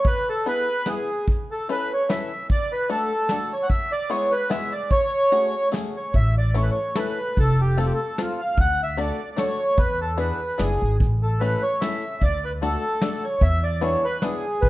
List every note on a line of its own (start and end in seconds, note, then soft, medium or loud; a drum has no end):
0.05 0.29 B4 loud
0.05 kick medium
0.05 closed hi-hat medium
0.29 0.47 A4 medium
0.45 0.69 B3 medium
0.45 0.68 E4 medium
0.45 0.69 G#4 soft
0.45 0.68 B4 medium
0.45 0.89 B4 loud
0.45 closed hi-hat soft
0.86 1.09 B3 medium
0.86 1.09 E4 soft
0.86 1.09 G#4 soft
0.86 1.26 G#4 medium
0.86 1.09 B4 medium
0.86 snare medium
0.86 closed hi-hat soft
1.27 kick medium
1.27 closed hi-hat soft
1.51 1.68 A4 medium
1.68 1.91 C#4 medium
1.68 1.91 E4 medium
1.68 1.91 A4 medium
1.68 1.91 B4 medium
1.68 1.93 B4 medium
1.68 closed hi-hat soft
1.93 2.11 C#5 medium
2.09 2.31 C#4 medium
2.09 2.31 E4 medium
2.09 2.32 A4 medium
2.09 2.31 B4 medium
2.09 2.47 E5 medium
2.09 snare medium
2.09 closed hi-hat soft
2.50 2.72 D5 loud
2.50 kick medium
2.50 closed hi-hat soft
2.72 2.90 B4 medium
2.90 3.11 A3 medium
2.90 3.11 D4 medium
2.90 3.11 F#4 medium
2.90 3.11 A4 medium
2.90 3.54 A4 loud
2.90 closed hi-hat medium
3.29 3.51 A3 medium
3.29 3.52 D4 soft
3.29 3.51 F#4 soft
3.29 3.52 A4 medium
3.29 snare medium
3.29 closed hi-hat soft
3.53 3.66 C#5 medium
3.63 3.68 F#5 medium
3.69 3.92 E5 loud
3.69 kick medium
3.69 closed hi-hat soft
3.92 4.10 D5 loud
4.09 4.32 G#3 medium
4.09 4.32 B3 medium
4.09 4.32 E4 medium
4.09 4.32 G#4 medium
4.09 4.32 C#5 medium
4.09 closed hi-hat soft
4.32 4.50 B4 loud
4.50 4.72 G#3 medium
4.50 4.72 B3 medium
4.50 4.72 E4 soft
4.50 4.72 G#4 medium
4.50 4.73 E5 medium
4.50 snare medium
4.50 closed hi-hat soft
4.72 4.91 D5 medium
4.90 5.68 C#5 loud
4.90 kick medium
4.90 closed hi-hat soft
5.31 5.54 A3 medium
5.31 5.54 C#4 medium
5.31 5.54 F#4 medium
5.31 5.54 G#4 medium
5.31 closed hi-hat soft
5.72 5.94 A3 medium
5.72 5.94 C#4 medium
5.72 5.95 F#4 medium
5.72 5.95 G#4 medium
5.72 snare medium
5.72 closed hi-hat soft
5.97 6.15 C#5 medium
6.13 6.67 A1 medium
6.13 6.35 E5 loud
6.13 kick medium
6.13 closed hi-hat soft
6.38 6.56 D5 medium
6.54 6.77 A3 medium
6.54 6.77 C#4 medium
6.54 6.77 E4 medium
6.54 6.77 A4 medium
6.54 6.63 C#5 medium
6.54 closed hi-hat soft
6.63 6.70 B4 medium
6.71 6.97 C#5 medium
6.95 7.18 A3 medium
6.95 7.18 C#4 medium
6.95 7.18 E4 soft
6.95 7.18 A4 medium
6.95 7.38 B4 medium
6.95 snare medium
6.95 closed hi-hat soft
7.36 7.90 F1 medium
7.36 7.61 A4 loud
7.36 kick medium
7.36 closed hi-hat soft
7.61 7.79 G4 medium
7.77 7.99 A3 medium
7.77 7.99 C4 medium
7.77 7.99 F4 medium
7.77 7.99 A4 medium
7.77 7.86 A4 medium
7.77 closed hi-hat soft
7.85 7.92 G4 medium
7.94 8.19 A4 medium
8.18 8.40 A3 soft
8.18 8.40 C4 medium
8.18 8.40 F4 soft
8.18 8.41 F4 medium
8.18 8.40 A4 medium
8.18 snare medium
8.18 closed hi-hat soft
8.41 8.58 F5 medium
8.57 9.09 D2 medium
8.57 8.81 F#5 loud
8.57 kick medium
8.57 closed hi-hat soft
8.83 9.00 E5 medium
8.97 9.19 A3 medium
8.97 9.19 D4 medium
8.97 9.19 F#4 medium
8.97 9.19 A4 medium
8.97 9.30 D5 medium
8.97 closed hi-hat soft
9.32 9.37 D5 medium
9.36 9.59 A3 medium
9.36 9.59 D4 medium
9.36 9.59 F#4 soft
9.36 9.59 A4 medium
9.36 9.79 C#5 medium
9.36 snare medium
9.36 closed hi-hat soft
9.77 10.30 E2 medium
9.77 10.00 B4 loud
9.77 kick medium
9.77 closed hi-hat soft
10.01 10.19 A4 medium
10.17 10.40 B3 medium
10.17 10.40 D4 medium
10.17 10.40 E4 medium
10.17 10.40 G#4 medium
10.17 10.60 B4 medium
10.17 closed hi-hat medium
10.58 10.79 F#1 medium
10.58 10.81 B3 soft
10.58 10.81 D4 soft
10.58 10.81 E4 soft
10.58 10.81 G#4 medium
10.58 10.97 G#4 medium
10.58 snare medium
10.58 closed hi-hat soft
10.82 10.98 G#1 medium
11.00 11.53 A1 medium
11.00 kick medium
11.00 closed hi-hat soft
11.23 11.41 A4 medium
11.40 11.63 A3 medium
11.40 11.63 C#4 medium
11.40 11.63 E4 medium
11.40 11.63 A4 medium
11.40 11.63 B4 medium
11.40 closed hi-hat soft
11.62 11.81 C#5 medium
11.81 12.03 A3 medium
11.81 12.03 C#4 medium
11.81 12.04 E4 medium
11.81 12.04 A4 medium
11.81 12.23 E5 medium
11.81 snare medium
11.81 closed hi-hat soft
12.21 12.74 D2 medium
12.21 12.45 D5 loud
12.21 kick medium
12.21 closed hi-hat soft
12.45 12.53 B4 medium
12.62 12.84 A3 medium
12.62 12.84 D4 medium
12.62 12.84 F#4 medium
12.62 13.26 A4 medium
12.62 12.84 A4 medium
12.62 closed hi-hat soft
13.01 13.24 A3 medium
13.01 13.24 D4 medium
13.01 13.24 F#4 medium
13.01 13.24 A4 medium
13.01 snare medium
13.01 closed hi-hat soft
13.24 13.43 C#5 medium
13.41 13.94 E2 loud
13.41 13.64 E5 loud
13.41 kick medium
13.41 closed hi-hat soft
13.64 13.83 D5 medium
13.81 14.04 B3 medium
13.81 14.04 D4 medium
13.81 14.04 E4 medium
13.81 14.04 G#4 medium
13.81 14.05 C#5 medium
13.81 closed hi-hat medium
14.04 14.23 B4 medium
14.22 14.45 B3 medium
14.22 14.45 D4 medium
14.22 14.45 E4 soft
14.22 14.69 G#4 medium
14.22 14.45 G#4 medium
14.22 snare medium
14.22 closed hi-hat soft
14.61 14.69 A1 medium
14.61 14.69 B4 medium
14.61 kick medium
14.61 closed hi-hat soft